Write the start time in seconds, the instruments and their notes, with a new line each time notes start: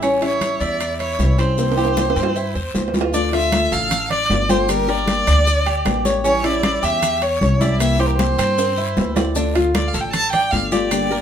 Already playing: upright bass A1
0.02 nylon-string guitar E3 G3 C#4 E4, cuban tres C#4, high conga, high timbale, long guiro, maracas
0.21 nylon-string guitar G3 C#4 E4, cuban tres E4, violin C#5, high conga, high timbale, maracas
0.41 nylon-string guitar E3 G3 C#4 E4, high conga, high timbale, short guiro, maracas
0.60 upright bass E2, cuban tres E4, violin D5, short guiro, maracas
0.80 muted nylon-string guitar stroke, high conga, high timbale, long guiro, maracas
0.99 cuban tres E4, violin C#5, high conga, high timbale, maracas
1.19 upright bass C2, nylon-string guitar E3 G3 C#4 E4, high conga, low timbale, short guiro, maracas
1.38 nylon-string guitar G3 C#4 E4, cuban tres C4, violin C5, high timbale, short guiro, maracas
1.57 nylon-string guitar C3 E3 A#3 C4 E4, high conga, high timbale, long guiro, maracas
1.72 high timbale
1.77 nylon-string guitar E3 A#3 C4 E4, cuban tres G4, high conga, maracas
1.85 high timbale
1.97 nylon-string guitar E3 A#3 C4 E4, high conga, low timbale, short guiro, maracas
2.10 high timbale
2.16 upright bass G2, cuban tres C4, high conga, short guiro, maracas
2.23 low timbale
2.35 cuban tres E4, muted nylon-string guitar stroke, high conga, long guiro, maracas
2.55 upright bass E2, cuban tres C5, high conga, maracas
2.74 upright bass D2, nylon-string guitar E3 A#3 C4 E4, high conga, low timbale, short guiro, maracas
2.88 low timbale
2.94 nylon-string guitar E3 A#3 C4 E4, cuban tres F4, high conga, short guiro, maracas
3.01 low timbale
3.13 nylon-string guitar D3 A3 D4 F4, cuban tres D4, violin D5, high conga, long guiro, maracas
3.32 nylon-string guitar A3 D4 F4, cuban tres F4, violin E5, high conga, high timbale, maracas
3.52 nylon-string guitar D3 A3 D4 F4, high conga, high timbale, short guiro, maracas
3.72 upright bass A1, cuban tres A4, violin F5, short guiro, maracas
3.91 muted nylon-string guitar stroke, high conga, low conga, high timbale, long guiro, maracas
4.10 cuban tres D5, violin D5, high conga, low conga, high timbale, maracas
4.30 upright bass G1, nylon-string guitar D3 A3 D4 F4, high conga, low timbale, short guiro, maracas
4.49 nylon-string guitar A3 D4 F4, cuban tres G4, violin C5, high conga, short guiro, maracas
4.68 nylon-string guitar D3 G3 A#3 D4 G4, violin A#4, high conga, high timbale, long guiro, maracas
4.88 nylon-string guitar G3 A#3 D4 G4, cuban tres A#4, violin D5, high conga, maracas
5.07 nylon-string guitar G3 A#3 D4 G4, high conga, high timbale, short guiro, maracas
5.27 upright bass D2, cuban tres D4, high conga, high timbale, short guiro, maracas
5.46 muted nylon-string guitar stroke, high conga, long guiro, maracas
5.66 cuban tres G4, high conga, high timbale, maracas
5.85 upright bass A1, nylon-string guitar G3 A#3 D4 G4, high conga, high timbale, low timbale, short guiro, maracas
6.05 nylon-string guitar G3 A#3 D4 G4, cuban tres C#5, high conga, short guiro, maracas
6.24 nylon-string guitar E3 G3 C#4 E4, cuban tres C#4, violin C#5, high conga, long guiro, maracas
6.44 nylon-string guitar G3 C#4 E4, cuban tres E4, violin D5, high conga, high timbale, maracas
6.63 nylon-string guitar E3 C#4, high conga, high timbale, short guiro, maracas
6.83 upright bass E2, cuban tres G4, violin E5, short guiro, maracas
7.02 muted nylon-string guitar stroke, high conga, low conga, high timbale, long guiro, maracas
7.22 cuban tres C#5, violin C#5, high conga, high timbale, maracas
7.40 upright bass C2, nylon-string guitar E3 G3 C#4 E4, high conga, short guiro, maracas
7.60 nylon-string guitar G3 C#4 E4, cuban tres E4, violin D5, high conga, short guiro, maracas
7.79 nylon-string guitar C3 E3 A#3 C4 E4, violin E5, high timbale, long guiro, maracas
7.99 nylon-string guitar E3 A#3 C4 E4, cuban tres G4, violin C5, high conga, maracas
8.06 violin A#4
8.14 violin C5
8.18 nylon-string guitar E3 A#3 C4 E4, high conga, high timbale, short guiro, maracas
8.38 upright bass G2, cuban tres C4, high conga, high timbale, short guiro, maracas
8.58 muted nylon-string guitar stroke, high conga, high timbale, long guiro, maracas
8.77 cuban tres E4, high conga, maracas
8.97 upright bass D2, nylon-string guitar E3 A#3 C4 E4, high conga, low timbale, short guiro, maracas
9.16 nylon-string guitar E3 A#3 C4 E4, cuban tres D5, high conga, low timbale, short guiro, maracas
9.35 nylon-string guitar D3 A3 D4 F4, cuban tres D4, high conga, long guiro, maracas
9.55 nylon-string guitar A3 D4 F4, cuban tres F4, high conga, high timbale, maracas
9.74 nylon-string guitar D3 A3 D4 F4, violin D5, high conga, high timbale, short guiro, maracas
9.88 violin F5
9.94 upright bass A1, cuban tres A4, short guiro, maracas
10.01 violin G5
10.13 violin A5, muted nylon-string guitar stroke, high conga, low conga, high timbale, long guiro, maracas
10.33 cuban tres D5, violin G5, high conga, low conga, high timbale, maracas
10.51 upright bass G1, nylon-string guitar D3 A3 D4 F4, violin F5, high conga, short guiro, maracas
10.72 nylon-string guitar A3 D4 F4, cuban tres G4, violin D5, high conga, short guiro, maracas
10.91 nylon-string guitar D3 G3 A#3 D4 G4, high conga, high timbale, long guiro, maracas
11.10 nylon-string guitar G3 A#3 D4 G4, cuban tres A#4, high conga, maracas